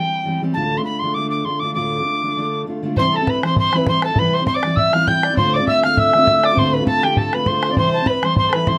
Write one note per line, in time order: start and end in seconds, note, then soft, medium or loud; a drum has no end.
0.00 0.24 E3 medium
0.00 0.25 G3 medium
0.00 0.26 C4 medium
0.00 0.27 G4 medium
0.00 0.41 G5 medium
0.25 0.41 E3 medium
0.25 0.41 G3 soft
0.25 0.42 C4 medium
0.25 0.43 G4 medium
0.42 0.56 E3 medium
0.42 0.56 G3 medium
0.42 0.57 C4 medium
0.42 0.57 G4 medium
0.53 0.79 D2 medium
0.53 0.79 A2 medium
0.53 0.79 D3 medium
0.53 0.79 A3 medium
0.53 0.78 D4 medium
0.53 0.79 A5 medium
0.57 0.77 F4 medium
0.77 1.00 D3 soft
0.77 1.02 A3 soft
0.77 1.02 D4 soft
0.77 1.02 F4 soft
0.77 0.84 C6 medium
0.84 1.00 B5 medium
0.99 1.15 D3 medium
0.99 1.15 A3 medium
0.99 1.15 C6 medium
1.04 1.16 D4 medium
1.04 1.17 F4 medium
1.14 1.44 D3 medium
1.14 1.46 A3 medium
1.14 1.46 D4 medium
1.14 1.29 D6 loud
1.18 1.47 F4 medium
1.30 1.46 D6 medium
1.44 1.61 D3 medium
1.44 1.61 A3 medium
1.44 1.62 D4 soft
1.44 1.64 F4 medium
1.44 1.61 C6 medium
1.59 1.74 D3 medium
1.59 1.75 A3 medium
1.59 1.73 D6 medium
1.63 1.75 D4 medium
1.63 1.76 F4 medium
1.74 1.99 D2 medium
1.74 1.99 A2 medium
1.74 1.99 D3 medium
1.74 1.99 A3 medium
1.74 2.00 D4 medium
1.74 1.99 F4 medium
1.74 2.61 D6 medium
2.00 2.21 D3 soft
2.00 2.22 A3 soft
2.00 2.23 D4 soft
2.00 2.23 F4 soft
2.23 2.36 D3 medium
2.23 2.36 A3 medium
2.23 2.37 D4 medium
2.23 2.37 F4 medium
2.37 2.65 D3 medium
2.37 2.66 A3 medium
2.37 2.67 D4 medium
2.37 2.68 F4 medium
2.67 2.81 D3 medium
2.67 2.82 A3 medium
2.67 2.84 D4 medium
2.67 2.84 F4 medium
2.83 2.97 D3 medium
2.83 2.97 A3 medium
2.83 2.98 D4 medium
2.83 2.98 F4 medium
2.96 3.20 C3 medium
2.96 3.20 E3 medium
2.96 3.20 G3 medium
2.96 3.19 C4 medium
2.96 3.18 E4 medium
2.96 3.04 C5 medium
2.96 3.17 C6 loud
2.96 bodhran medium
3.13 3.29 A4 medium
3.13 3.31 A5 medium
3.19 3.43 G3 soft
3.19 3.43 C4 soft
3.19 3.43 E4 soft
3.27 3.42 B4 medium
3.27 3.44 B5 medium
3.27 bodhran medium
3.43 3.71 E3 medium
3.43 3.73 G3 medium
3.43 3.75 C4 medium
3.43 3.74 E4 medium
3.43 3.56 C5 medium
3.43 3.57 C6 medium
3.43 bodhran medium
3.56 3.78 C5 medium
3.56 3.76 C6 loud
3.56 bodhran medium
3.72 3.87 E3 medium
3.72 3.87 G3 medium
3.72 3.88 C4 medium
3.72 3.88 E4 medium
3.72 3.88 B5 medium
3.72 bodhran medium
3.77 3.90 B4 medium
3.86 4.10 E3 medium
3.86 4.11 G3 soft
3.86 4.11 C4 medium
3.86 4.10 E4 medium
3.86 4.05 C5 medium
3.86 4.03 C6 loud
3.86 bodhran medium
4.02 4.20 A4 medium
4.02 4.20 A5 medium
4.02 bodhran medium
4.11 4.18 G3 soft
4.11 4.18 C4 soft
4.11 4.18 E4 soft
4.16 4.41 C3 medium
4.16 4.41 E3 medium
4.16 4.41 G3 medium
4.16 4.36 B4 medium
4.16 4.35 B5 medium
4.16 bodhran medium
4.20 4.42 C4 medium
4.20 4.40 E4 medium
4.33 4.47 C5 medium
4.33 4.45 C6 loud
4.42 4.64 G3 soft
4.42 4.64 C4 soft
4.42 4.64 E4 soft
4.46 4.57 C5 medium
4.46 4.55 C6 medium
4.46 bodhran medium
4.54 4.79 D5 medium
4.54 4.77 D6 medium
4.63 4.92 E3 soft
4.63 4.93 G3 medium
4.63 4.95 C4 medium
4.63 4.94 E4 medium
4.63 bodhran medium
4.76 4.95 E5 medium
4.76 4.94 E6 loud
4.76 bodhran medium
4.93 5.07 E3 medium
4.93 5.07 G3 medium
4.93 5.08 C4 medium
4.93 5.08 E4 medium
4.93 5.07 F5 medium
4.93 5.09 F6 loud
4.93 bodhran medium
5.07 5.31 E3 medium
5.07 5.31 G3 medium
5.07 5.31 C4 medium
5.07 5.29 E4 medium
5.07 5.25 G5 medium
5.07 5.36 G6 loud
5.07 bodhran medium
5.23 5.39 D5 medium
5.23 bodhran medium
5.30 5.38 G3 soft
5.30 5.37 C4 soft
5.30 5.37 E4 medium
5.37 5.60 D2 medium
5.37 5.60 A2 medium
5.37 5.60 D3 medium
5.37 5.60 A3 medium
5.37 5.60 C4 medium
5.37 5.58 F4 medium
5.37 5.57 C5 loud
5.37 5.55 C6 loud
5.37 bodhran medium
5.53 5.69 D5 medium
5.53 5.67 D6 loud
5.59 5.82 D3 soft
5.59 5.83 A3 soft
5.59 5.83 C4 soft
5.59 5.83 F4 medium
5.67 5.84 E5 medium
5.67 5.82 E6 loud
5.67 bodhran medium
5.83 6.13 D3 medium
5.83 6.14 A3 medium
5.83 6.16 C4 medium
5.83 6.14 F4 medium
5.83 5.99 F5 medium
5.83 6.00 F6 loud
5.83 bodhran medium
5.97 6.45 E5 medium
5.97 6.46 E6 loud
5.97 bodhran medium
6.13 6.26 D3 medium
6.13 6.27 A3 medium
6.13 6.28 C4 medium
6.13 6.28 F4 medium
6.13 bodhran soft
6.27 6.50 D3 medium
6.27 6.51 A3 medium
6.27 6.51 C4 soft
6.27 6.50 F4 medium
6.27 bodhran medium
6.43 6.55 D5 medium
6.43 6.60 D6 loud
6.43 bodhran medium
6.52 6.58 D3 soft
6.52 6.58 A3 soft
6.52 6.58 C4 soft
6.52 6.58 F4 soft
6.52 6.75 C5 medium
6.57 6.80 D2 medium
6.57 6.81 A2 medium
6.57 6.81 D3 medium
6.57 6.81 A3 medium
6.57 6.81 C4 medium
6.57 6.79 F4 medium
6.57 6.74 C6 loud
6.57 bodhran medium
6.73 6.89 B4 medium
6.73 6.86 B5 medium
6.81 7.01 D3 soft
6.81 7.02 A3 soft
6.81 7.03 C4 medium
6.81 7.03 F4 medium
6.86 7.03 A4 medium
6.86 7.05 A5 loud
6.86 bodhran medium
7.02 7.31 D3 medium
7.02 7.33 A3 medium
7.02 7.34 C4 medium
7.02 7.34 F4 medium
7.02 7.18 G4 medium
7.02 7.19 G5 medium
7.02 bodhran medium
7.17 7.34 A4 medium
7.17 7.36 A5 medium
7.17 bodhran medium
7.33 7.46 D3 soft
7.33 7.47 A3 medium
7.33 7.48 C4 medium
7.33 7.48 F4 medium
7.33 7.48 B4 medium
7.33 7.49 B5 medium
7.33 bodhran medium
7.46 7.70 D3 medium
7.46 7.70 A3 medium
7.46 7.69 C4 medium
7.46 7.67 F4 medium
7.46 7.70 C5 medium
7.46 7.77 C6 medium
7.46 bodhran medium
7.63 bodhran medium
7.69 7.77 D3 soft
7.69 7.77 A3 soft
7.69 7.77 C4 soft
7.69 7.76 F4 soft
7.69 7.79 D5 soft
7.77 8.00 C3 medium
7.77 8.00 E3 medium
7.77 8.01 G3 medium
7.77 8.00 C4 medium
7.77 7.98 E4 medium
7.77 8.10 C5 loud
7.77 7.92 C6 medium
7.77 bodhran medium
7.93 8.08 A5 medium
7.99 8.22 G3 soft
7.99 8.24 C4 soft
7.99 8.23 E4 soft
8.06 8.26 B4 medium
8.06 8.26 B5 medium
8.06 bodhran medium
8.22 8.52 E3 medium
8.22 8.53 G3 medium
8.22 8.54 C4 medium
8.22 8.54 E4 medium
8.22 8.38 C5 medium
8.22 8.37 C6 loud
8.22 bodhran medium
8.36 8.50 C5 medium
8.36 8.55 C6 medium
8.36 bodhran medium
8.49 8.53 A4 medium
8.49 8.68 B4 medium
8.53 8.66 E3 medium
8.53 8.67 G3 medium
8.53 8.68 C4 medium
8.53 8.68 E4 medium
8.53 8.69 B5 medium
8.53 bodhran medium
8.67 8.78 E3 medium
8.67 8.78 G3 medium
8.67 8.78 C4 medium
8.67 8.78 E4 medium
8.67 8.78 C5 medium
8.67 8.78 C6 medium
8.67 bodhran medium